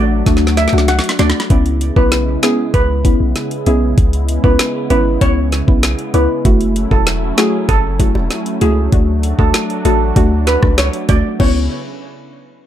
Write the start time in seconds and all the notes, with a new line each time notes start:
Already playing: A1 F#3 A3 D4 F#4 D5
0.26 D2 A3 D4 F#4, kick, snare, closed hi-hat
0.37 snare
0.47 snare
0.57 E5, snare, closed hi-hat
0.68 snare
0.73 C#2 A3 D4 F#4, high bongo
0.78 snare
0.88 F#5, snare, closed hi-hat
0.99 snare
1.04 closed hi-hat
1.09 snare
1.19 D2 A3 D4 F#4 D5, snare, closed hi-hat, high bongo, low bongo
1.30 snare
1.40 snare
1.50 C#2 C#3 G#3 B3 C#4 E4, kick, closed hi-hat
1.66 closed hi-hat
1.81 closed hi-hat
1.96 B1 B3 C#4 E4 B4, kick
2.12 snare, closed hi-hat
2.43 B3 C#4 E4 G#4, snare, closed hi-hat
2.74 C#2 B4, kick, closed hi-hat
3.05 B3 C#4 E4, kick, closed hi-hat
3.20 B1
3.36 snare, closed hi-hat
3.51 closed hi-hat
3.66 B1 B3 C#4 E4 G#4, closed hi-hat
3.98 C#2, kick, closed hi-hat
4.13 closed hi-hat
4.29 closed hi-hat
4.44 C#2 B3 C#4 E4 B4, kick
4.59 snare, closed hi-hat
4.90 G#1 B3 C#4 E4 B4, closed hi-hat
5.21 C#2 B3 C#4 E4 C#5, kick, closed hi-hat
5.52 snare, closed hi-hat
5.67 B1 B3 C#4 E4, kick
5.83 snare, closed hi-hat
5.99 closed hi-hat
6.14 C#2 B3 C#4 E4 B4, closed hi-hat
6.45 F#1 F#3 A3 C#4 E4 F#4, kick, closed hi-hat
6.61 closed hi-hat
6.76 closed hi-hat
6.91 E1 A3 E4 F#4 A4, kick
7.07 snare, closed hi-hat
7.37 A3 E4 F#4 G#4, snare, closed hi-hat
7.69 F#1 A4, kick, closed hi-hat, high bongo
7.99 A3 E4 F#4, kick, closed hi-hat, high bongo
8.15 E1, high bongo
8.30 snare, closed hi-hat, high bongo
8.46 closed hi-hat
8.61 C#2 A3 E4 F#4 G#4, closed hi-hat, high bongo, low bongo
8.92 D2 F#3 A3 D4 F#4, kick, closed hi-hat
9.23 closed hi-hat
9.39 D2 A3 D4 F#4 A4, kick
9.54 snare, closed hi-hat
9.70 closed hi-hat
9.85 A1 A3 D4 F#4 A4, closed hi-hat
10.16 D2 A3 D4 F#4, kick, closed hi-hat, high bongo
10.47 B4, snare, closed hi-hat, high bongo
10.62 C#2 A3 D4 F#4, kick, cross-stick, high bongo
10.78 C#5, snare, closed hi-hat, high bongo
10.93 closed hi-hat
11.09 D2 A3 D4 F#4 D5, kick, closed hi-hat, high bongo, low bongo
11.39 C#2 C#3 B3 C#4 E4 B4 C#5, kick, crash, high bongo